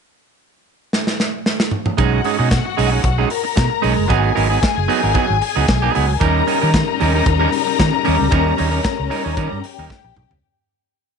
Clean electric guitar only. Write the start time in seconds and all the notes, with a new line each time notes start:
1.97 G#3 C#4 D#4 G#4
2.25 G#3 C#4 D#4 G#4
2.38 G#3 C#4 D#4 G#4
2.65 muted clean electric guitar stroke
2.77 G#3 C#4 D#4 G#4
2.92 G#3 C#4 D#4 G#4
3.03 muted clean electric guitar stroke
3.18 G#3 C#4 D#4 G#4
3.31 muted clean electric guitar stroke
3.44 muted clean electric guitar stroke
3.56 muted clean electric guitar stroke
3.70 muted clean electric guitar stroke
3.82 G#3 C#4 D#4 G#4
3.96 muted clean electric guitar stroke
4.08 F#3 B3 D#4 G#4
4.35 F#3 B3 D#4 A#4
4.50 F#3 B3 D#4 G#4
4.61 muted clean electric guitar stroke
4.75 muted clean electric guitar stroke
4.88 F#3 B3 D#4 G#4
5.03 F#3 B3 D#4 A#4
5.14 F#3 B3 D#4 G#4
5.28 muted clean electric guitar stroke
5.41 muted clean electric guitar stroke
5.56 F#3 B3 D#4 G#4
5.82 F#3 B3 D#4 G#4
5.95 F#3 B3 D#4 G#4
6.08 muted clean electric guitar stroke
6.20 G3 C#4 D#4 A#4
6.47 G3 C#4 D#4 A#4
6.61 G3 C#4 D#4 A#4
6.73 muted clean electric guitar stroke
6.88 muted clean electric guitar stroke
7.00 G3 C#4 D#4 A#4
7.15 G3 C#4 D#4 A#4
7.27 muted clean electric guitar stroke
7.40 G3 C#4 D#4 A#4
7.52 muted clean electric guitar stroke
7.67 muted clean electric guitar stroke
7.79 muted clean electric guitar stroke
7.93 muted clean electric guitar stroke
8.05 G3 C#4 D#4 A#4
8.19 muted clean electric guitar stroke
8.31 G3 C#4 D#4 A#4
8.57 G3 C#4 D#4 C#5
8.71 G3 C#4 D#4 A#4
8.83 muted clean electric guitar stroke
8.97 muted clean electric guitar stroke
9.10 G3 C#4 D#4 A#4
9.24 G3 C#4 D#4 C#5
9.37 G3 C#4 D#4 A#4
9.52 muted clean electric guitar stroke
9.65 muted clean electric guitar stroke
9.79 G3 C#4 D#4 A#4
10.04 muted clean electric guitar stroke
10.31 muted clean electric guitar stroke